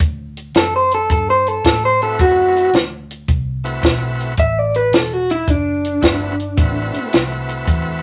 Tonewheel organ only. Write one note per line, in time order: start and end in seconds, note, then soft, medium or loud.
2.01 2.70 A3 medium
2.01 2.71 C4 medium
2.01 2.71 E4 medium
2.01 2.71 F#4 medium
2.01 2.71 B4 medium
3.64 4.34 A3 medium
3.64 4.34 C4 medium
3.64 4.34 E4 medium
3.64 4.34 F#4 medium
3.64 4.34 B4 medium
6.01 6.35 A3 medium
6.01 6.35 C4 medium
6.01 6.35 E4 medium
6.01 6.35 F#4 medium
6.01 6.35 B4 medium
6.57 8.02 A3 medium
6.57 8.02 C4 medium
6.57 8.02 E4 medium
6.57 8.02 F#4 medium
6.57 8.02 B4 medium